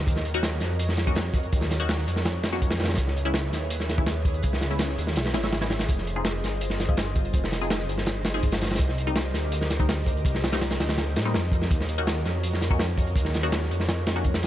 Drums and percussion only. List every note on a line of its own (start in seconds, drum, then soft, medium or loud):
0.07 kick loud
0.07 closed hi-hat medium
0.16 snare medium
0.25 closed hi-hat medium
0.43 snare loud
0.43 closed hi-hat medium
0.60 snare soft
0.60 closed hi-hat medium
0.79 closed hi-hat loud
0.89 snare soft
0.97 snare medium
0.97 closed hi-hat medium
1.07 kick medium
1.15 snare loud
1.15 closed hi-hat medium
1.34 kick loud
1.34 closed hi-hat medium
1.43 closed hi-hat soft
1.52 kick loud
1.52 closed hi-hat medium
1.61 snare medium
1.71 snare medium
1.71 closed hi-hat medium
1.80 closed hi-hat soft
1.89 snare loud
1.89 closed hi-hat medium
1.98 snare soft
2.08 closed hi-hat medium
2.16 snare medium
2.25 snare loud
2.25 closed hi-hat medium
2.43 snare loud
2.43 closed hi-hat medium
2.53 snare soft
2.62 kick medium
2.62 closed hi-hat medium
2.70 snare loud
2.70 closed hi-hat medium
2.80 snare medium
2.80 closed hi-hat medium
2.84 snare loud
2.84 closed hi-hat medium
2.88 snare medium
2.88 closed hi-hat medium
2.94 snare medium
2.94 closed hi-hat medium
2.97 kick loud
2.97 closed hi-hat medium
3.07 snare soft
3.17 closed hi-hat medium
3.34 snare loud
3.34 closed hi-hat medium
3.53 snare medium
3.53 closed hi-hat medium
3.70 closed hi-hat medium
3.80 snare soft
3.89 snare medium
3.89 closed hi-hat medium
3.98 kick loud
4.06 snare loud
4.06 closed hi-hat medium
4.25 kick loud
4.25 closed hi-hat medium
4.34 closed hi-hat soft
4.43 kick loud
4.43 closed hi-hat medium
4.53 snare medium
4.61 snare medium
4.61 closed hi-hat medium
4.71 closed hi-hat soft
4.79 snare loud
4.79 closed hi-hat loud
4.89 snare soft
4.98 closed hi-hat medium
5.07 snare medium
5.16 snare loud
5.16 closed hi-hat medium
5.24 snare loud
5.24 closed hi-hat medium
5.34 snare loud
5.34 closed hi-hat medium
5.43 snare loud
5.43 closed hi-hat medium
5.52 snare loud
5.52 closed hi-hat medium
5.61 snare medium
5.61 closed hi-hat medium
5.70 snare loud
5.70 closed hi-hat medium
5.79 snare loud
5.79 closed hi-hat medium
5.89 kick loud
5.89 closed hi-hat medium
5.98 snare soft
6.07 closed hi-hat medium
6.25 snare loud
6.25 closed hi-hat medium
6.44 snare soft
6.44 closed hi-hat medium
6.61 closed hi-hat medium
6.70 snare soft
6.80 snare medium
6.80 closed hi-hat medium
6.89 kick loud
6.97 snare loud
6.97 closed hi-hat medium
7.15 kick medium
7.15 closed hi-hat medium
7.25 closed hi-hat soft
7.33 kick loud
7.33 closed hi-hat medium
7.44 snare medium
7.52 snare medium
7.52 closed hi-hat medium
7.62 closed hi-hat soft
7.70 snare loud
7.70 closed hi-hat medium
7.79 snare soft
7.89 closed hi-hat medium
7.98 snare medium
8.06 snare loud
8.06 closed hi-hat medium
8.25 snare loud
8.25 closed hi-hat medium
8.34 snare soft
8.43 kick loud
8.43 closed hi-hat medium
8.52 snare loud
8.52 closed hi-hat medium
8.61 snare medium
8.61 closed hi-hat medium
8.66 snare medium
8.66 closed hi-hat medium
8.71 snare medium
8.71 closed hi-hat medium
8.75 snare medium
8.75 closed hi-hat medium
8.79 kick loud
8.79 closed hi-hat loud
8.89 snare soft
8.98 closed hi-hat medium
9.16 snare loud
9.16 closed hi-hat medium
9.34 snare medium
9.34 closed hi-hat medium
9.52 closed hi-hat medium
9.61 snare medium
9.70 snare medium
9.70 closed hi-hat medium
9.80 kick loud
9.89 snare loud
9.89 closed hi-hat medium
10.06 kick medium
10.06 closed hi-hat medium
10.17 closed hi-hat soft
10.25 kick loud
10.25 closed hi-hat loud
10.35 snare medium
10.44 snare loud
10.44 closed hi-hat medium
10.52 snare loud
10.52 closed hi-hat medium
10.61 snare loud
10.61 closed hi-hat medium
10.70 snare loud
10.70 closed hi-hat medium
10.80 snare loud
10.80 closed hi-hat medium
10.89 snare loud
10.89 closed hi-hat medium
10.98 snare loud
10.98 closed hi-hat medium
11.16 snare loud
11.16 closed hi-hat medium
11.34 snare loud
11.34 closed hi-hat medium
11.52 kick loud
11.52 closed hi-hat medium
11.62 snare medium
11.71 kick loud
11.71 closed hi-hat loud
11.81 snare medium
11.89 closed hi-hat medium
12.07 snare loud
12.07 closed hi-hat medium
12.25 snare soft
12.25 closed hi-hat medium
12.43 closed hi-hat medium
12.53 snare soft
12.62 snare medium
12.62 closed hi-hat medium
12.71 kick loud
12.79 snare loud
12.79 closed hi-hat loud
12.98 kick medium
12.98 closed hi-hat medium
13.07 closed hi-hat soft
13.16 kick loud
13.16 closed hi-hat loud
13.25 snare soft
13.34 snare medium
13.34 closed hi-hat medium
13.44 closed hi-hat soft
13.52 snare loud
13.52 closed hi-hat medium
13.62 snare soft
13.71 closed hi-hat medium
13.80 snare medium
13.89 snare loud
13.89 closed hi-hat medium
14.07 snare loud
14.07 closed hi-hat medium
14.16 snare soft
14.24 kick medium
14.24 closed hi-hat medium
14.34 snare medium
14.34 closed hi-hat medium
14.43 closed hi-hat medium